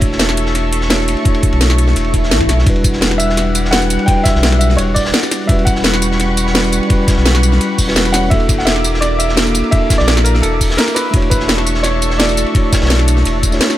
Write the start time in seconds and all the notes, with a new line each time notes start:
Already playing: E1 A3 D4 E4 F#4 A4 C#5 E5 C#6
0.01 kick, closed hi-hat, ride
0.12 snare
0.19 snare, closed hi-hat, ride
0.29 snare
0.37 closed hi-hat, ride
0.46 snare
0.55 snare, closed hi-hat, ride
0.72 closed hi-hat, ride
0.81 snare
0.89 A3 D4 E4 F#4 C#5, snare, closed hi-hat, ride
1.08 closed hi-hat, ride
1.17 ride
1.23 A3 D4 E4, kick, closed hi-hat, ride
1.27 F#4 C#5
1.34 ride
1.42 kick, closed hi-hat, ride
1.52 B1, ride
1.61 snare, closed hi-hat, ride
1.69 snare, ride
1.78 closed hi-hat, ride
1.88 snare
1.96 E1, closed hi-hat, ride, swell
2.04 ride
2.14 kick, closed hi-hat, ride
2.23 snare
2.31 A1, snare, closed hi-hat, ride
2.40 kick, snare, ride
2.49 B1, snare, closed hi-hat, ride
2.59 snare
2.64 E1 G3 D4 E4 F#5, kick, closed hi-hat, ride
2.68 F#4 B4
2.76 ride
2.84 kick, closed hi-hat, ride, tambourine
2.93 snare
3.01 snare, closed hi-hat, ride
3.11 snare
3.18 E5, closed hi-hat, ride, tambourine
3.29 snare
3.37 snare, closed hi-hat, ride, tambourine
3.55 closed hi-hat, ride, tambourine
3.65 snare
3.71 G3 D4 E4 F#4 B4 F#5, snare, closed hi-hat, ride
3.82 tambourine
3.90 closed hi-hat, ride, tambourine
3.99 ride
4.05 G3 D4 E4 G5, kick, closed hi-hat, ride
4.09 F#4 B4
4.24 E5, kick, snare, closed hi-hat, ride, tambourine
4.35 B1, snare
4.43 snare, closed hi-hat, ride
4.52 snare
4.59 E5, closed hi-hat, ride, tambourine
4.70 snare
4.77 E1 C#5, closed hi-hat, ride, tambourine
4.94 D5, kick, closed hi-hat, open hi-hat, tambourine
5.05 snare
5.14 snare, closed hi-hat, ride
5.23 snare, tambourine
5.31 snare, closed hi-hat, ride, tambourine
5.46 E1 G3 C#4 E4 E5 F#5 B5 C#6, kick, closed hi-hat, ride
5.50 F#4 B4
5.59 ride
5.65 F#5, kick, closed hi-hat, ride, tambourine
5.75 snare
5.84 snare, closed hi-hat, ride
5.93 snare
6.02 closed hi-hat, ride, tambourine
6.11 snare
6.20 snare, closed hi-hat, ride, tambourine
6.37 closed hi-hat, ride, tambourine
6.47 snare
6.53 G3 C#4 E4 F#4 B4, snare, closed hi-hat, ride
6.64 tambourine
6.72 closed hi-hat, ride, tambourine
6.83 ride
6.87 G3 C#4 E4, kick, closed hi-hat, ride
6.92 F#4 B4
7.08 kick, snare, closed hi-hat, ride, tambourine
7.16 B1, snare
7.25 snare, closed hi-hat, ride
7.35 snare
7.43 closed hi-hat, ride, tambourine
7.52 snare
7.61 closed hi-hat, ride, tambourine
7.78 E1, kick, closed hi-hat, open hi-hat, tambourine
7.86 G3 C#4 E4 F#4 B4, snare
7.96 snare, closed hi-hat, ride
8.05 snare, tambourine
8.12 G3 C#4 E4 F#4 C#5 F#5, snare, closed hi-hat, ride, tambourine
8.29 E1 A#3 D4 E4 E5 D6, kick, closed hi-hat, ride
8.33 F#4 A4
8.40 ride
8.49 kick, closed hi-hat, ride, tambourine
8.58 F#5, snare
8.65 E5, snare, closed hi-hat, ride
8.76 snare
8.84 closed hi-hat, ride, tambourine
8.94 snare
9.01 D5, snare, closed hi-hat, ride, tambourine
9.19 E5, closed hi-hat, ride, tambourine
9.29 snare
9.36 A#3 D4 E4 F#4 A4, snare, closed hi-hat, ride
9.46 tambourine
9.54 closed hi-hat, ride, tambourine
9.64 ride
9.70 A#3 D4 E4 E5, kick, closed hi-hat, ride
9.74 F#4 A4
9.90 kick, snare, closed hi-hat, ride, tambourine
9.98 A#1 D5, snare
10.08 snare, closed hi-hat, ride
10.17 snare
10.24 A#4, closed hi-hat, ride, tambourine
10.35 A#4, snare
10.42 E1 A4, closed hi-hat, ride, tambourine
10.61 kick, closed hi-hat, open hi-hat, tambourine
10.70 snare
10.77 A#4, snare, closed hi-hat, ride
10.88 snare, tambourine
10.95 B4, snare, closed hi-hat, ride, tambourine
11.11 E1 A3 D4 E4 A4 C#6, kick, closed hi-hat, ride
11.15 F#4 C#5
11.22 ride
11.30 B4, kick, closed hi-hat, ride, tambourine
11.40 snare
11.48 snare, closed hi-hat, ride
11.58 snare
11.66 closed hi-hat, ride, tambourine
11.74 snare
11.83 C#5, snare, closed hi-hat, ride, tambourine
12.02 closed hi-hat, ride, tambourine
12.10 snare
12.18 A3 D4 E4 F#4 D5, snare, closed hi-hat, ride
12.29 tambourine
12.37 closed hi-hat, ride, tambourine
12.46 ride
12.52 A3 D4 E4, kick, closed hi-hat, ride
12.56 F#4 C#5
12.72 kick, snare, closed hi-hat, ride, tambourine
12.81 B1, snare, ride
12.86 snare, ride
12.90 snare, closed hi-hat, ride
12.99 snare
13.08 closed hi-hat, ride, tambourine
13.17 snare
13.25 E1, closed hi-hat, ride, tambourine
13.43 kick, closed hi-hat, ride, tambourine
13.51 A3 D4 E4 F#4 C#5, snare, tambourine
13.61 snare, closed hi-hat, ride
13.70 snare, tambourine